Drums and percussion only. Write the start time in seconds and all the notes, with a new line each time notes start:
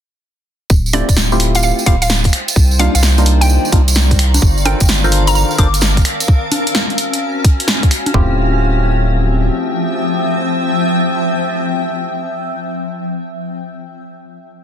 0.70 kick, tambourine
0.86 tambourine
0.93 open hi-hat, high conga
1.09 kick, closed hi-hat, tambourine
1.17 snare, tambourine
1.32 tambourine
1.40 finger snap, open hi-hat
1.55 closed hi-hat, tambourine
1.63 tambourine
1.79 tambourine
1.86 kick, open hi-hat
2.02 closed hi-hat, tambourine
2.10 snare, tambourine
2.24 kick, closed hi-hat, tambourine
2.33 finger snap, open hi-hat
2.48 closed hi-hat, tambourine
2.56 kick, tambourine
2.71 tambourine
2.79 open hi-hat, high conga
2.95 closed hi-hat, tambourine
3.03 snare, tambourine
3.18 closed hi-hat, tambourine
3.26 open hi-hat
3.41 closed hi-hat, tambourine
3.50 tambourine
3.65 tambourine
3.72 kick, open hi-hat
3.88 closed hi-hat, tambourine
3.95 snare, tambourine
4.11 kick, closed hi-hat, tambourine
4.19 finger snap, open hi-hat
4.34 closed hi-hat, tambourine, high conga
4.42 kick, tambourine
4.58 tambourine
4.65 open hi-hat, high conga
4.80 kick, closed hi-hat, tambourine
4.88 snare, tambourine
5.04 tambourine
5.12 finger snap, open hi-hat
5.27 closed hi-hat, tambourine
5.35 tambourine
5.51 tambourine
5.58 kick, open hi-hat
5.74 closed hi-hat, tambourine
5.81 snare, tambourine
5.97 kick, closed hi-hat, tambourine
6.05 finger snap, open hi-hat
6.20 closed hi-hat, tambourine
6.28 kick
6.52 open hi-hat, high conga
6.67 closed hi-hat
6.75 snare
6.90 closed hi-hat
6.98 open hi-hat
7.13 closed hi-hat
7.44 kick, open hi-hat
7.60 closed hi-hat
7.68 snare
7.83 kick, closed hi-hat
7.91 finger snap, open hi-hat
8.06 closed hi-hat, high conga
8.14 kick, floor tom